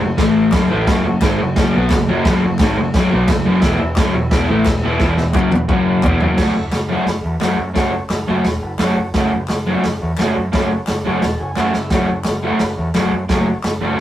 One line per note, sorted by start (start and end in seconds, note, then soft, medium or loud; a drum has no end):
0.01 0.18 F#1 medium
0.01 0.15 F#2 medium
0.01 0.15 C#3 medium
0.01 0.12 F#4 medium
0.01 0.11 A4 medium
0.01 0.12 C#5 medium
0.17 0.50 A1 medium
0.17 0.52 A2 loud
0.17 0.52 E3 loud
0.17 0.53 A3 loud
0.17 0.29 E4 medium
0.17 0.29 A4 medium
0.17 0.30 E5 loud
0.17 kick loud
0.17 snare loud
0.17 crash medium
0.37 0.47 E4 medium
0.37 0.48 A4 medium
0.37 0.47 E5 medium
0.52 0.69 F#1 medium
0.52 0.69 F#2 loud
0.52 0.69 C#3 loud
0.52 0.70 F#3 loud
0.52 0.64 F#4 loud
0.52 0.64 A4 medium
0.52 0.65 C#5 loud
0.52 kick loud
0.52 snare loud
0.52 clap loud
0.52 crash medium
0.70 0.87 A1 medium
0.70 0.87 A2 loud
0.70 0.87 E3 loud
0.70 0.88 A3 loud
0.70 0.81 F#4 medium
0.70 0.80 A4 medium
0.70 0.81 E5 medium
0.87 1.04 F#1 loud
0.87 1.03 F#2 loud
0.87 1.04 C#3 loud
0.87 1.05 F#3 loud
0.87 0.98 F#4 loud
0.87 0.99 A4 loud
0.87 0.99 B4 loud
0.87 kick loud
0.87 snare loud
0.87 crash medium
1.05 1.21 F#1 medium
1.05 1.18 F#2 medium
1.05 1.19 C#3 medium
1.05 1.16 F#4 loud
1.05 1.17 A4 loud
1.05 1.16 C#5 loud
1.22 1.38 G#1 medium
1.22 1.39 G#2 medium
1.22 1.39 D#3 loud
1.22 1.39 G#3 loud
1.22 1.33 F#4 medium
1.22 1.33 A4 medium
1.22 1.34 E5 medium
1.22 kick loud
1.22 snare loud
1.22 clap loud
1.22 crash medium
1.40 1.55 F#1 medium
1.40 1.53 F#2 medium
1.40 1.54 C#3 medium
1.40 1.51 F#4 medium
1.40 1.50 A4 medium
1.40 1.50 C#5 medium
1.56 1.73 F#1 loud
1.56 1.73 F#2 medium
1.56 1.74 C#3 medium
1.56 1.74 F#3 loud
1.56 1.68 F#4 medium
1.56 1.68 A4 medium
1.56 1.68 C#5 medium
1.56 kick loud
1.56 snare loud
1.56 crash medium
1.75 1.90 B1 loud
1.75 1.91 B2 medium
1.75 1.91 F#3 loud
1.75 1.92 B3 medium
1.75 1.86 F#4 medium
1.75 1.86 A4 medium
1.75 1.86 C#5 loud
1.90 2.07 F#1 medium
1.90 2.06 F#2 medium
1.90 2.06 C#3 medium
1.90 2.02 F#4 loud
1.90 2.03 A4 loud
1.90 2.03 B4 loud
1.90 kick loud
1.90 snare loud
1.90 clap loud
1.90 crash medium
2.08 2.24 F#1 medium
2.08 2.25 F#2 medium
2.08 2.25 C#3 loud
2.08 2.26 F#3 loud
2.08 2.19 F#4 medium
2.08 2.19 A4 medium
2.08 2.19 C#5 medium
2.25 2.41 F#1 medium
2.25 2.42 F#2 loud
2.25 2.43 C#3 loud
2.25 2.43 F#3 loud
2.25 2.36 F#4 loud
2.25 2.36 A4 loud
2.25 2.37 B4 loud
2.25 kick loud
2.25 snare loud
2.25 crash medium
2.43 2.59 F#1 medium
2.43 2.57 F#2 medium
2.43 2.58 C#3 medium
2.43 2.53 F#4 loud
2.43 2.53 A4 loud
2.43 2.53 C#5 loud
2.59 2.76 G#1 medium
2.59 2.77 G#2 medium
2.59 2.77 D#3 loud
2.59 2.78 G#3 loud
2.59 2.71 F#4 medium
2.59 2.71 A4 medium
2.59 2.71 C#5 medium
2.59 kick loud
2.59 snare loud
2.59 clap medium
2.59 crash medium
2.77 2.93 F#1 medium
2.77 2.91 F#2 medium
2.77 2.91 C#3 medium
2.77 2.89 F#4 medium
2.77 2.89 A4 medium
2.77 2.89 C#5 loud
2.94 3.10 F#1 loud
2.94 3.11 F#2 loud
2.94 3.12 C#3 medium
2.94 3.12 F#3 loud
2.94 3.05 F#4 medium
2.94 3.05 A4 medium
2.94 3.05 E5 loud
2.94 kick loud
2.94 snare loud
2.94 crash medium
3.10 3.27 B1 medium
3.10 3.28 B2 medium
3.10 3.29 F#3 loud
3.10 3.29 B3 loud
3.10 3.21 F#4 medium
3.10 3.21 A4 medium
3.10 3.21 B4 loud
3.28 3.44 F#1 medium
3.28 3.43 F#2 medium
3.28 3.43 C#3 medium
3.28 3.39 F#4 loud
3.28 3.39 A4 medium
3.28 3.39 E5 loud
3.28 kick loud
3.28 snare loud
3.28 clap loud
3.28 crash medium
3.46 3.62 F#1 medium
3.46 3.62 F#2 medium
3.46 3.63 C#3 loud
3.46 3.63 F#3 loud
3.46 3.56 F#4 medium
3.46 3.56 A4 medium
3.46 3.57 B4 medium
3.61 3.79 E1 medium
3.61 3.78 E2 loud
3.61 3.79 B2 loud
3.61 3.80 E3 loud
3.61 3.72 E4 loud
3.61 3.73 B4 loud
3.61 3.72 E5 loud
3.61 kick loud
3.61 snare loud
3.61 crash medium
3.77 3.96 E1 medium
3.77 3.93 E2 medium
3.77 3.94 B2 medium
3.77 3.89 E4 loud
3.77 3.90 B4 loud
3.77 3.89 E5 loud
3.95 4.13 F#1 medium
3.95 4.14 F#2 medium
3.95 4.14 C#3 loud
3.95 4.07 E4 medium
3.95 4.07 B4 medium
3.95 4.07 D5 loud
3.95 kick loud
3.95 snare loud
3.95 clap medium
3.95 crash medium
3.99 4.15 F#3 loud
4.13 4.30 E1 medium
4.13 4.28 E2 medium
4.13 4.28 B2 medium
4.13 4.24 E4 medium
4.13 4.25 B4 medium
4.13 4.25 C#5 medium
4.30 4.47 E1 loud
4.30 4.48 E2 loud
4.30 4.49 B2 loud
4.30 4.49 E3 loud
4.30 4.41 E4 medium
4.30 4.41 B4 medium
4.30 4.42 E5 loud
4.30 kick loud
4.30 snare loud
4.30 crash medium
4.47 4.65 A1 medium
4.47 4.66 A2 medium
4.47 4.66 E3 medium
4.47 4.58 E4 medium
4.47 4.58 B4 medium
4.47 4.59 E5 loud
4.51 4.66 A3 medium
4.63 4.82 E1 medium
4.63 4.80 E2 medium
4.63 4.80 B2 medium
4.63 4.75 E4 loud
4.63 4.75 B4 loud
4.63 4.75 E5 loud
4.63 kick loud
4.63 snare loud
4.63 clap loud
4.63 crash medium
4.82 4.99 E1 medium
4.82 4.99 E2 medium
4.82 5.00 B2 medium
4.82 5.01 E3 loud
4.82 4.93 E4 medium
4.82 4.93 B4 medium
4.82 4.93 E5 medium
4.98 5.16 E1 medium
4.98 5.17 E2 loud
4.98 5.09 E4 loud
4.98 5.09 B4 loud
4.98 5.10 E5 loud
4.98 kick loud
4.98 snare medium
5.02 5.18 B2 loud
5.02 5.18 E3 loud
5.16 5.34 E1 medium
5.16 5.32 E2 medium
5.16 5.32 B2 medium
5.16 5.27 E4 loud
5.16 5.28 B4 loud
5.16 5.27 E5 loud
5.16 snare medium
5.33 5.51 F#1 loud
5.33 5.51 F#2 loud
5.33 5.52 C#3 loud
5.33 5.52 F#3 loud
5.33 5.44 E4 medium
5.33 5.45 B4 medium
5.33 5.44 F#5 loud
5.33 kick loud
5.33 clap loud
5.51 5.68 E1 medium
5.51 5.65 E2 medium
5.51 5.66 B2 medium
5.51 5.62 E4 medium
5.51 5.62 B4 medium
5.51 5.62 F#5 loud
5.51 clap medium
5.51 high tom medium
5.69 6.01 F#1 medium
5.69 6.03 F#2 medium
5.69 6.03 C#3 loud
5.69 6.04 F#3 loud
5.69 5.80 F#4 medium
5.69 5.79 C#5 medium
5.69 5.80 F#5 medium
5.69 kick loud
5.69 mid tom medium
5.88 5.98 F#4 medium
5.88 5.97 C#5 medium
5.88 5.98 F#5 medium
6.03 6.19 E1 medium
6.03 6.20 E2 medium
6.03 6.20 B2 loud
6.03 6.21 E3 loud
6.03 6.14 E4 loud
6.03 6.14 B4 loud
6.03 6.11 E5 loud
6.03 6.12 F#5 medium
6.03 kick loud
6.03 clap medium
6.03 floor tom loud
6.12 6.20 E5 medium
6.20 6.37 F#1 medium
6.20 6.36 F#2 loud
6.20 6.37 C#3 loud
6.20 6.38 F#3 loud
6.20 6.31 E4 medium
6.20 6.31 B4 medium
6.20 6.31 E5 medium
6.20 floor tom medium
6.37 6.49 F#1 medium
6.37 6.51 F#2 medium
6.37 6.52 C#3 loud
6.37 6.52 F#3 loud
6.37 6.52 A3 loud
6.37 6.53 C#4 loud
6.37 6.49 F#4 loud
6.37 6.53 F#4 loud
6.37 6.48 A4 medium
6.37 6.48 C#5 loud
6.37 kick loud
6.37 snare loud
6.37 crash loud
6.55 6.66 F#1 medium
6.55 6.66 F#4 medium
6.55 6.66 A4 medium
6.55 6.66 E5 medium
6.71 6.94 F#1 medium
6.71 6.82 F#4 loud
6.71 6.83 A4 loud
6.71 6.83 C#5 loud
6.71 snare loud
6.71 clap medium
6.71 open hi-hat medium
6.88 7.03 F#2 loud
6.88 7.04 C#3 medium
6.88 7.04 F#3 medium
6.88 7.04 A3 loud
6.88 7.00 F#4 medium
6.88 6.99 A4 medium
6.88 7.00 B4 medium
6.93 7.05 C#4 loud
6.93 7.05 F#4 loud
7.06 7.18 F#1 medium
7.06 7.17 F#4 medium
7.06 7.18 A4 medium
7.06 7.18 C#5 medium
7.06 snare loud
7.06 open hi-hat medium
7.24 7.35 E2 medium
7.24 7.36 F#4 medium
7.24 7.36 A4 medium
7.24 7.36 B4 medium
7.41 7.52 F#1 medium
7.41 7.55 F#2 loud
7.41 7.55 C#3 medium
7.41 7.55 F#3 medium
7.41 7.56 A3 loud
7.41 7.56 C#4 loud
7.41 7.52 F#4 loud
7.41 7.57 F#4 medium
7.41 7.52 A4 medium
7.41 7.52 B4 loud
7.41 snare loud
7.41 clap loud
7.41 open hi-hat medium
7.58 7.70 F#2 medium
7.58 7.69 F#4 medium
7.58 7.69 A4 medium
7.58 7.69 C#5 medium
7.74 7.99 F#1 medium
7.74 7.89 F#2 loud
7.74 7.90 C#3 loud
7.74 7.90 F#3 loud
7.74 7.90 A3 loud
7.74 7.90 C#4 loud
7.74 7.86 F#4 loud
7.74 7.91 F#4 loud
7.74 7.86 A4 medium
7.74 7.86 C#5 loud
7.74 kick loud
7.74 snare loud
7.74 open hi-hat medium
7.93 8.04 F#4 medium
7.93 8.04 A4 medium
7.93 8.04 C#5 loud
8.10 8.21 F#1 medium
8.10 8.21 F#4 loud
8.10 8.22 A4 loud
8.10 8.22 E5 loud
8.10 snare loud
8.10 clap medium
8.10 open hi-hat medium
8.26 8.39 F#1 medium
8.26 8.42 F#2 medium
8.26 8.42 C#3 medium
8.26 8.43 F#3 medium
8.26 8.43 A3 medium
8.26 8.38 F#4 medium
8.26 8.38 A4 medium
8.26 8.38 C#5 medium
8.30 8.43 C#4 medium
8.30 8.43 F#4 loud
8.45 8.56 E1 medium
8.45 8.56 F#4 medium
8.45 8.56 A4 medium
8.45 8.56 C#5 medium
8.45 snare loud
8.45 open hi-hat medium
8.62 8.73 F#1 medium
8.62 8.73 F#4 medium
8.62 8.74 A4 medium
8.62 8.73 B4 medium
8.79 8.93 F#2 loud
8.79 8.91 F#2 medium
8.79 8.94 C#3 loud
8.79 8.94 F#3 loud
8.79 8.95 A3 loud
8.79 8.95 C#4 loud
8.79 8.90 F#4 loud
8.79 8.90 A4 medium
8.79 8.90 E5 loud
8.79 snare loud
8.79 clap medium
8.79 open hi-hat medium
8.84 8.96 F#4 loud
8.97 9.08 F#1 medium
8.97 9.08 F#4 medium
8.97 9.08 A4 medium
8.97 9.08 C#5 medium
9.14 9.26 F#1 medium
9.14 9.28 F#2 loud
9.14 9.29 C#3 medium
9.14 9.29 F#3 loud
9.14 9.29 A3 loud
9.14 9.30 C#4 loud
9.14 9.25 F#4 loud
9.14 9.30 F#4 loud
9.14 9.25 A4 medium
9.14 9.25 B4 loud
9.14 kick loud
9.14 snare loud
9.14 open hi-hat medium
9.29 9.44 F#1 medium
9.29 9.41 F#4 medium
9.29 9.41 A4 medium
9.29 9.41 B4 medium
9.48 9.72 F#1 medium
9.48 9.59 F#4 loud
9.48 9.59 A4 medium
9.48 9.60 C#5 loud
9.48 snare loud
9.48 clap medium
9.48 open hi-hat medium
9.66 9.80 F#2 medium
9.66 9.81 C#3 medium
9.66 9.81 F#3 medium
9.66 9.82 A3 medium
9.66 9.82 C#4 medium
9.66 9.77 F#4 medium
9.66 9.82 F#4 medium
9.66 9.77 A4 medium
9.66 9.77 B4 medium
9.84 9.96 F#1 medium
9.84 9.94 F#4 medium
9.84 9.95 A4 medium
9.84 9.95 C#5 medium
9.84 snare loud
9.84 open hi-hat medium
10.01 10.13 E2 medium
10.01 10.12 F#4 medium
10.01 10.12 A4 medium
10.01 10.12 C#5 medium
10.17 10.30 F#1 medium
10.17 10.32 F#2 medium
10.17 10.33 C#3 loud
10.17 10.33 F#3 loud
10.17 10.34 A3 medium
10.17 10.29 F#4 loud
10.17 10.29 A4 medium
10.17 10.29 C#5 loud
10.17 snare loud
10.17 clap loud
10.17 open hi-hat medium
10.21 10.34 C#4 loud
10.21 10.34 F#4 loud
10.35 10.48 F#2 medium
10.35 10.46 F#4 medium
10.35 10.46 A4 medium
10.35 10.46 C#5 medium
10.52 10.76 F#1 medium
10.52 10.67 F#2 medium
10.52 10.67 C#3 loud
10.52 10.67 F#3 loud
10.52 10.68 A3 loud
10.52 10.68 C#4 loud
10.52 10.64 F#4 loud
10.52 10.68 F#4 loud
10.52 10.64 A4 medium
10.52 10.64 C#5 loud
10.52 kick loud
10.52 snare loud
10.52 open hi-hat medium
10.71 10.81 F#4 medium
10.71 10.81 A4 medium
10.71 10.81 C#5 medium
10.87 11.00 F#1 medium
10.87 10.99 F#4 loud
10.87 10.99 A4 medium
10.87 10.99 C#5 loud
10.87 snare loud
10.87 clap medium
10.87 open hi-hat medium
11.05 11.17 F#1 medium
11.05 11.19 F#2 medium
11.05 11.19 C#3 medium
11.05 11.20 F#3 medium
11.05 11.20 A3 medium
11.05 11.21 C#4 medium
11.05 11.16 F#4 medium
11.05 11.21 F#4 loud
11.05 11.17 A4 medium
11.05 11.16 C#5 medium
11.05 11.22 C#6 medium
11.22 11.34 E1 medium
11.22 11.34 F#4 medium
11.22 11.34 A4 medium
11.22 11.34 C#5 medium
11.22 11.39 A5 medium
11.22 snare loud
11.22 open hi-hat medium
11.39 11.51 F#1 medium
11.39 11.50 F#4 medium
11.39 11.50 A4 medium
11.39 11.51 C#5 medium
11.39 11.56 G#5 medium
11.56 11.70 F#2 medium
11.56 11.69 F#2 medium
11.56 11.71 C#3 medium
11.56 11.71 F#3 medium
11.56 11.72 A3 medium
11.56 11.72 C#4 medium
11.56 11.67 F#4 medium
11.56 11.72 F#4 loud
11.56 11.67 A4 medium
11.56 11.67 E5 loud
11.56 11.73 F#5 medium
11.56 snare medium
11.56 clap loud
11.73 11.86 F#1 medium
11.73 11.85 F#4 medium
11.73 11.85 A4 medium
11.73 11.85 C#5 medium
11.73 11.91 E5 medium
11.73 snare medium
11.90 12.03 F#1 medium
11.90 12.05 F#2 loud
11.90 12.06 C#3 loud
11.90 12.06 F#3 loud
11.90 12.06 A3 loud
11.90 12.06 C#4 loud
11.90 12.02 F#4 loud
11.90 12.03 A4 medium
11.90 12.03 C#5 loud
11.90 kick loud
11.90 snare loud
11.90 open hi-hat medium
11.95 12.07 F#4 loud
12.08 12.20 F#1 medium
12.08 12.19 F#4 medium
12.08 12.19 A4 medium
12.08 12.19 C#5 medium
12.24 12.49 F#1 medium
12.24 12.37 F#4 loud
12.24 12.37 A4 loud
12.24 12.37 C#5 loud
12.24 snare loud
12.24 clap loud
12.24 open hi-hat medium
12.43 12.57 F#2 medium
12.43 12.58 C#3 medium
12.43 12.58 F#3 medium
12.43 12.58 A3 medium
12.43 12.59 C#4 medium
12.43 12.54 F#4 medium
12.43 12.59 F#4 medium
12.43 12.54 A4 medium
12.43 12.54 B4 medium
12.59 12.72 F#1 medium
12.59 12.72 F#4 medium
12.59 12.72 A4 medium
12.59 12.72 B4 medium
12.59 snare loud
12.59 open hi-hat soft
12.78 12.89 E2 medium
12.78 12.89 F#4 medium
12.78 12.89 A4 medium
12.78 12.89 C#5 medium
12.94 13.07 F#1 medium
12.94 13.09 F#2 loud
12.94 13.09 C#3 loud
12.94 13.10 F#3 medium
12.94 13.10 A3 loud
12.94 13.10 C#4 loud
12.94 13.06 F#4 loud
12.94 13.07 A4 medium
12.94 13.07 C#5 loud
12.94 snare loud
12.94 clap medium
12.94 open hi-hat medium
12.99 13.11 F#4 loud
13.12 13.24 F#2 medium
13.12 13.23 F#4 medium
13.12 13.24 A4 medium
13.12 13.24 C#5 medium
13.29 13.52 F#1 medium
13.29 13.44 F#2 loud
13.29 13.44 C#3 loud
13.29 13.45 F#3 medium
13.29 13.45 A3 loud
13.29 13.45 C#4 loud
13.29 13.42 F#4 loud
13.29 13.45 F#4 loud
13.29 13.42 A4 loud
13.29 13.42 C#5 loud
13.29 kick loud
13.29 snare loud
13.29 open hi-hat medium
13.47 13.58 F#4 medium
13.47 13.58 A4 medium
13.47 13.58 C#5 loud
13.63 13.76 F#1 medium
13.63 13.74 F#4 loud
13.63 13.75 A4 loud
13.63 13.75 C#5 loud
13.63 snare loud
13.63 clap medium
13.63 open hi-hat medium
13.80 13.93 F#1 medium
13.80 13.96 F#2 medium
13.80 13.96 C#3 medium
13.80 13.97 F#3 medium
13.80 13.97 A3 medium
13.80 13.97 C#4 medium
13.80 13.92 F#4 medium
13.80 13.92 A4 medium
13.80 13.92 C#5 medium
13.85 13.97 F#4 medium
13.97 14.00 F#4 medium
13.97 14.00 A4 medium
13.97 14.00 C#5 medium